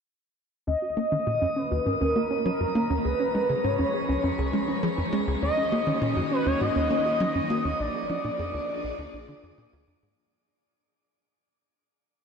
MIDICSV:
0, 0, Header, 1, 5, 480
1, 0, Start_track
1, 0, Key_signature, -6, "minor"
1, 0, Tempo, 594059
1, 543, Time_signature, 4, 2, 24, 8
1, 9893, End_track
2, 0, Start_track
2, 0, Title_t, "Analog synth lead"
2, 0, Program_c, 0, 81
2, 544, Note_on_c, 0, 75, 114
2, 1261, Note_on_c, 0, 71, 93
2, 1273, Note_off_c, 0, 75, 0
2, 1502, Note_on_c, 0, 70, 95
2, 1514, Note_off_c, 0, 71, 0
2, 1977, Note_off_c, 0, 70, 0
2, 1982, Note_on_c, 0, 70, 89
2, 2462, Note_on_c, 0, 71, 97
2, 2474, Note_off_c, 0, 70, 0
2, 2942, Note_on_c, 0, 73, 85
2, 2955, Note_off_c, 0, 71, 0
2, 3423, Note_off_c, 0, 73, 0
2, 4382, Note_on_c, 0, 75, 114
2, 4830, Note_off_c, 0, 75, 0
2, 5108, Note_on_c, 0, 71, 89
2, 5225, Note_on_c, 0, 73, 95
2, 5237, Note_off_c, 0, 71, 0
2, 5345, Note_on_c, 0, 75, 112
2, 5357, Note_off_c, 0, 73, 0
2, 6303, Note_on_c, 0, 74, 109
2, 6315, Note_off_c, 0, 75, 0
2, 7983, Note_off_c, 0, 74, 0
2, 9893, End_track
3, 0, Start_track
3, 0, Title_t, "Synth arpeggio sound"
3, 0, Program_c, 1, 84
3, 544, Note_on_c, 1, 61, 94
3, 658, Note_off_c, 1, 61, 0
3, 663, Note_on_c, 1, 66, 71
3, 763, Note_off_c, 1, 66, 0
3, 784, Note_on_c, 1, 61, 94
3, 883, Note_off_c, 1, 61, 0
3, 904, Note_on_c, 1, 61, 95
3, 1017, Note_off_c, 1, 61, 0
3, 1024, Note_on_c, 1, 66, 76
3, 1123, Note_off_c, 1, 66, 0
3, 1144, Note_on_c, 1, 61, 95
3, 1243, Note_off_c, 1, 61, 0
3, 1264, Note_on_c, 1, 61, 95
3, 1377, Note_off_c, 1, 61, 0
3, 1385, Note_on_c, 1, 66, 72
3, 1484, Note_off_c, 1, 66, 0
3, 1504, Note_on_c, 1, 61, 94
3, 1603, Note_off_c, 1, 61, 0
3, 1624, Note_on_c, 1, 61, 94
3, 1737, Note_off_c, 1, 61, 0
3, 1744, Note_on_c, 1, 66, 73
3, 1843, Note_off_c, 1, 66, 0
3, 1863, Note_on_c, 1, 61, 96
3, 1963, Note_off_c, 1, 61, 0
3, 1984, Note_on_c, 1, 61, 90
3, 2097, Note_off_c, 1, 61, 0
3, 2104, Note_on_c, 1, 66, 72
3, 2203, Note_off_c, 1, 66, 0
3, 2223, Note_on_c, 1, 61, 93
3, 2323, Note_off_c, 1, 61, 0
3, 2343, Note_on_c, 1, 61, 96
3, 2457, Note_off_c, 1, 61, 0
3, 2464, Note_on_c, 1, 68, 79
3, 2563, Note_off_c, 1, 68, 0
3, 2583, Note_on_c, 1, 61, 95
3, 2683, Note_off_c, 1, 61, 0
3, 2703, Note_on_c, 1, 61, 95
3, 2817, Note_off_c, 1, 61, 0
3, 2822, Note_on_c, 1, 68, 72
3, 2922, Note_off_c, 1, 68, 0
3, 2942, Note_on_c, 1, 61, 92
3, 3042, Note_off_c, 1, 61, 0
3, 3063, Note_on_c, 1, 61, 96
3, 3177, Note_off_c, 1, 61, 0
3, 3183, Note_on_c, 1, 68, 72
3, 3283, Note_off_c, 1, 68, 0
3, 3302, Note_on_c, 1, 61, 98
3, 3402, Note_off_c, 1, 61, 0
3, 3422, Note_on_c, 1, 61, 96
3, 3537, Note_off_c, 1, 61, 0
3, 3544, Note_on_c, 1, 68, 72
3, 3643, Note_off_c, 1, 68, 0
3, 3662, Note_on_c, 1, 61, 95
3, 3762, Note_off_c, 1, 61, 0
3, 3784, Note_on_c, 1, 61, 96
3, 3897, Note_off_c, 1, 61, 0
3, 3904, Note_on_c, 1, 68, 75
3, 4003, Note_off_c, 1, 68, 0
3, 4024, Note_on_c, 1, 61, 97
3, 4123, Note_off_c, 1, 61, 0
3, 4144, Note_on_c, 1, 61, 93
3, 4257, Note_off_c, 1, 61, 0
3, 4264, Note_on_c, 1, 68, 70
3, 4364, Note_off_c, 1, 68, 0
3, 4385, Note_on_c, 1, 61, 97
3, 4484, Note_off_c, 1, 61, 0
3, 4504, Note_on_c, 1, 61, 92
3, 4617, Note_off_c, 1, 61, 0
3, 4624, Note_on_c, 1, 66, 74
3, 4723, Note_off_c, 1, 66, 0
3, 4745, Note_on_c, 1, 61, 95
3, 4844, Note_off_c, 1, 61, 0
3, 4864, Note_on_c, 1, 61, 96
3, 4977, Note_off_c, 1, 61, 0
3, 4984, Note_on_c, 1, 66, 74
3, 5083, Note_off_c, 1, 66, 0
3, 5103, Note_on_c, 1, 61, 98
3, 5203, Note_off_c, 1, 61, 0
3, 5223, Note_on_c, 1, 61, 99
3, 5337, Note_off_c, 1, 61, 0
3, 5342, Note_on_c, 1, 66, 79
3, 5442, Note_off_c, 1, 66, 0
3, 5461, Note_on_c, 1, 61, 94
3, 5562, Note_off_c, 1, 61, 0
3, 5583, Note_on_c, 1, 61, 98
3, 5697, Note_off_c, 1, 61, 0
3, 5703, Note_on_c, 1, 66, 72
3, 5803, Note_off_c, 1, 66, 0
3, 5822, Note_on_c, 1, 61, 99
3, 5922, Note_off_c, 1, 61, 0
3, 5943, Note_on_c, 1, 61, 100
3, 6057, Note_off_c, 1, 61, 0
3, 6063, Note_on_c, 1, 66, 71
3, 6163, Note_off_c, 1, 66, 0
3, 6182, Note_on_c, 1, 61, 96
3, 6282, Note_off_c, 1, 61, 0
3, 6302, Note_on_c, 1, 62, 100
3, 6417, Note_off_c, 1, 62, 0
3, 6423, Note_on_c, 1, 68, 70
3, 6523, Note_off_c, 1, 68, 0
3, 6542, Note_on_c, 1, 62, 98
3, 6642, Note_off_c, 1, 62, 0
3, 6662, Note_on_c, 1, 62, 95
3, 6776, Note_off_c, 1, 62, 0
3, 6782, Note_on_c, 1, 68, 80
3, 6882, Note_off_c, 1, 68, 0
3, 6903, Note_on_c, 1, 62, 99
3, 7003, Note_off_c, 1, 62, 0
3, 7024, Note_on_c, 1, 62, 98
3, 7137, Note_off_c, 1, 62, 0
3, 7143, Note_on_c, 1, 68, 75
3, 7243, Note_off_c, 1, 68, 0
3, 7264, Note_on_c, 1, 62, 97
3, 7363, Note_off_c, 1, 62, 0
3, 7384, Note_on_c, 1, 62, 96
3, 7498, Note_off_c, 1, 62, 0
3, 7506, Note_on_c, 1, 62, 74
3, 7604, Note_off_c, 1, 62, 0
3, 7625, Note_on_c, 1, 74, 70
3, 7724, Note_off_c, 1, 74, 0
3, 7744, Note_on_c, 1, 62, 80
3, 7858, Note_off_c, 1, 62, 0
3, 7864, Note_on_c, 1, 65, 74
3, 7963, Note_off_c, 1, 65, 0
3, 7984, Note_on_c, 1, 62, 71
3, 8043, Note_off_c, 1, 62, 0
3, 8105, Note_on_c, 1, 68, 76
3, 8204, Note_off_c, 1, 68, 0
3, 9893, End_track
4, 0, Start_track
4, 0, Title_t, "String machine"
4, 0, Program_c, 2, 50
4, 543, Note_on_c, 2, 51, 64
4, 646, Note_on_c, 2, 46, 75
4, 747, Note_on_c, 2, 61, 81
4, 1105, Note_on_c, 2, 73, 73
4, 1378, Note_on_c, 2, 66, 72
4, 2461, Note_on_c, 2, 53, 78
4, 2462, Note_off_c, 2, 66, 0
4, 2463, Note_off_c, 2, 51, 0
4, 2553, Note_on_c, 2, 68, 79
4, 2725, Note_on_c, 2, 56, 67
4, 3231, Note_off_c, 2, 46, 0
4, 4381, Note_off_c, 2, 56, 0
4, 4382, Note_off_c, 2, 53, 0
4, 4383, Note_on_c, 2, 51, 72
4, 4542, Note_on_c, 2, 66, 77
4, 4574, Note_on_c, 2, 58, 68
4, 5150, Note_off_c, 2, 68, 0
4, 6302, Note_off_c, 2, 73, 0
4, 6303, Note_off_c, 2, 51, 0
4, 6303, Note_off_c, 2, 61, 0
4, 6303, Note_on_c, 2, 53, 84
4, 6304, Note_off_c, 2, 66, 0
4, 6566, Note_on_c, 2, 62, 70
4, 6581, Note_on_c, 2, 68, 88
4, 6750, Note_on_c, 2, 74, 88
4, 8222, Note_off_c, 2, 68, 0
4, 8222, Note_off_c, 2, 74, 0
4, 8223, Note_off_c, 2, 53, 0
4, 8223, Note_off_c, 2, 62, 0
4, 8224, Note_off_c, 2, 58, 0
4, 9893, End_track
5, 0, Start_track
5, 0, Title_t, "Analog synth bass"
5, 0, Program_c, 3, 38
5, 543, Note_on_c, 3, 39, 80
5, 614, Note_off_c, 3, 39, 0
5, 782, Note_on_c, 3, 58, 72
5, 853, Note_off_c, 3, 58, 0
5, 904, Note_on_c, 3, 51, 71
5, 946, Note_off_c, 3, 51, 0
5, 1023, Note_on_c, 3, 46, 91
5, 1129, Note_off_c, 3, 46, 0
5, 1144, Note_on_c, 3, 42, 70
5, 1186, Note_off_c, 3, 42, 0
5, 1385, Note_on_c, 3, 39, 90
5, 1455, Note_off_c, 3, 39, 0
5, 1503, Note_on_c, 3, 44, 78
5, 1574, Note_off_c, 3, 44, 0
5, 1624, Note_on_c, 3, 39, 92
5, 1729, Note_off_c, 3, 39, 0
5, 1743, Note_on_c, 3, 58, 71
5, 1814, Note_off_c, 3, 58, 0
5, 1984, Note_on_c, 3, 54, 98
5, 2026, Note_off_c, 3, 54, 0
5, 2104, Note_on_c, 3, 42, 73
5, 2146, Note_off_c, 3, 42, 0
5, 2224, Note_on_c, 3, 58, 95
5, 2330, Note_off_c, 3, 58, 0
5, 2343, Note_on_c, 3, 39, 93
5, 2414, Note_off_c, 3, 39, 0
5, 2463, Note_on_c, 3, 37, 81
5, 2534, Note_off_c, 3, 37, 0
5, 2705, Note_on_c, 3, 56, 70
5, 2775, Note_off_c, 3, 56, 0
5, 2824, Note_on_c, 3, 49, 71
5, 2866, Note_off_c, 3, 49, 0
5, 2943, Note_on_c, 3, 44, 96
5, 3049, Note_off_c, 3, 44, 0
5, 3064, Note_on_c, 3, 41, 73
5, 3106, Note_off_c, 3, 41, 0
5, 3303, Note_on_c, 3, 37, 92
5, 3374, Note_off_c, 3, 37, 0
5, 3423, Note_on_c, 3, 41, 74
5, 3493, Note_off_c, 3, 41, 0
5, 3542, Note_on_c, 3, 37, 92
5, 3649, Note_off_c, 3, 37, 0
5, 3662, Note_on_c, 3, 56, 72
5, 3733, Note_off_c, 3, 56, 0
5, 3902, Note_on_c, 3, 53, 101
5, 3945, Note_off_c, 3, 53, 0
5, 4022, Note_on_c, 3, 41, 76
5, 4065, Note_off_c, 3, 41, 0
5, 4141, Note_on_c, 3, 56, 96
5, 4248, Note_off_c, 3, 56, 0
5, 4261, Note_on_c, 3, 37, 92
5, 4333, Note_off_c, 3, 37, 0
5, 4381, Note_on_c, 3, 39, 81
5, 4453, Note_off_c, 3, 39, 0
5, 4623, Note_on_c, 3, 58, 74
5, 4694, Note_off_c, 3, 58, 0
5, 4740, Note_on_c, 3, 51, 73
5, 4784, Note_off_c, 3, 51, 0
5, 4860, Note_on_c, 3, 46, 99
5, 4967, Note_off_c, 3, 46, 0
5, 4980, Note_on_c, 3, 42, 73
5, 5024, Note_off_c, 3, 42, 0
5, 5220, Note_on_c, 3, 39, 94
5, 5292, Note_off_c, 3, 39, 0
5, 5340, Note_on_c, 3, 44, 76
5, 5412, Note_off_c, 3, 44, 0
5, 5460, Note_on_c, 3, 39, 97
5, 5568, Note_off_c, 3, 39, 0
5, 5579, Note_on_c, 3, 58, 70
5, 5651, Note_off_c, 3, 58, 0
5, 5819, Note_on_c, 3, 54, 101
5, 5864, Note_off_c, 3, 54, 0
5, 5940, Note_on_c, 3, 42, 71
5, 5984, Note_off_c, 3, 42, 0
5, 6060, Note_on_c, 3, 58, 99
5, 6168, Note_off_c, 3, 58, 0
5, 6179, Note_on_c, 3, 39, 91
5, 6252, Note_off_c, 3, 39, 0
5, 6299, Note_on_c, 3, 34, 78
5, 6372, Note_off_c, 3, 34, 0
5, 6540, Note_on_c, 3, 53, 72
5, 6612, Note_off_c, 3, 53, 0
5, 6661, Note_on_c, 3, 46, 73
5, 6704, Note_off_c, 3, 46, 0
5, 6779, Note_on_c, 3, 41, 98
5, 6887, Note_off_c, 3, 41, 0
5, 6899, Note_on_c, 3, 38, 74
5, 6943, Note_off_c, 3, 38, 0
5, 7139, Note_on_c, 3, 34, 92
5, 7212, Note_off_c, 3, 34, 0
5, 7258, Note_on_c, 3, 38, 75
5, 7331, Note_off_c, 3, 38, 0
5, 7379, Note_on_c, 3, 34, 93
5, 7487, Note_off_c, 3, 34, 0
5, 7499, Note_on_c, 3, 50, 71
5, 7543, Note_off_c, 3, 50, 0
5, 7619, Note_on_c, 3, 41, 75
5, 7692, Note_off_c, 3, 41, 0
5, 7739, Note_on_c, 3, 46, 83
5, 7812, Note_off_c, 3, 46, 0
5, 7860, Note_on_c, 3, 38, 98
5, 7967, Note_off_c, 3, 38, 0
5, 7979, Note_on_c, 3, 41, 74
5, 8052, Note_off_c, 3, 41, 0
5, 8100, Note_on_c, 3, 44, 73
5, 8208, Note_off_c, 3, 44, 0
5, 9893, End_track
0, 0, End_of_file